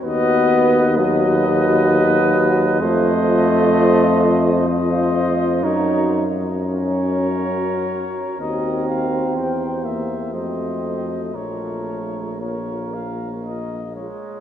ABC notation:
X:1
M:3/4
L:1/8
Q:1/4=64
K:Bbm
V:1 name="Cornet"
^d2 d4 | e4 e2 | d z d4 | e f =g =e _e2 |
d2 d f e d |]
V:2 name="Flugelhorn"
=B2 B4 | c4 c2 | B z B4 | B2 c2 c2 |
B2 B3 A, |]
V:3 name="Euphonium"
^F2 F4 | F4 F2 | G z G4 | G2 =G2 _G2 |
F2 F3 z |]
V:4 name="Euphonium"
=B,2 ^F,4 | =A,4 F2 | E z D3 z | C3 B, =A,2 |
=A,2 B,3 z |]
V:5 name="Tuba" clef=bass
^D,,6 | F,,6 | G,,6 | E,,2 =E,,2 F,,2 |
B,,,4- B,,, z |]